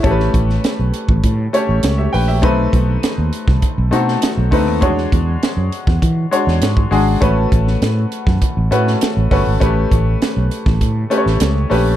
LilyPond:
<<
  \new Staff \with { instrumentName = "Grand piano" } { \time 4/4 \key a \major \tempo 4 = 100 << { <e' cis''>16 r2. <g' e''>16 <b' g''>16 <g' e''>16~ | <g' e''>16 r2. r8. | r1 | r1 |
r1 | } \\ { <a cis' g' a' b'>2 r8 <a cis' g' cis''>4 r8 | <a c' dis' b'>2 r8 <a c' dis' fis'>4 <a c' dis' b'>8 | <gis d' fis' cis''>2 r8 <gis d' fis' cis''>4 <gis d' fis' gis'>8 | <a cis' fis' b'>2 r8 <a cis' fis' b'>4 <a cis' fis' b'>8 |
<a cis' g' b'>2 r8 <a cis' g' b' cis''>4 <a cis' g' b'>8 | } >> }
  \new Staff \with { instrumentName = "Fretless electric bass" } { \clef bass \time 4/4 \key a \major a,,8 a,,8 r16 b,,16 r16 a,,16 a,8 r16 a,,16 cis,8 bes,,8 | b,,8 b,,8 r16 dis,16 r16 c,16 r16 b,,16 b,8 r16 b,,16 d,16 dis,16 | e,8 e,8 r16 fis,16 r16 e,16 e8 r16 e,16 gis,8 gis,,8 | a,,8 a,,8 a,8 r16 fis,16 r16 a,,16 a,8 r16 a,,16 g,,16 gis,,16 |
a,,8 a,,8 r16 b,,16 r16 a,,16 a,8 r16 a,,16 cis,8 bes,,8 | }
  \new DrumStaff \with { instrumentName = "Drums" } \drummode { \time 4/4 <hh bd>16 sn16 <hh bd>16 sn16 <hh sn>8 hh16 bd16 <hh bd>8 hh8 <hh sn>8 hho8 | <hh bd>8 <hh bd>8 <hh sn>8 hh16 <bd sn>16 <hh bd>8 hh16 sn16 <hh sn>8 <hho bd>8 | <hh bd>16 sn16 <hh bd>8 <hh sn>8 hh16 <bd sn>16 <hh bd>8 hh16 sn16 <hh sn>16 bd16 hho8 | <hh bd>8 <hh bd>16 sn16 <hh sn>8 hh16 <bd sn>16 <hh bd>8 hh16 sn16 <hh sn>8 <hho bd>8 |
<hh bd>8 <hh bd>8 <hh sn>8 hh16 <bd sn>16 <hh bd>8 hh16 sn16 <hh sn>8 hho8 | }
>>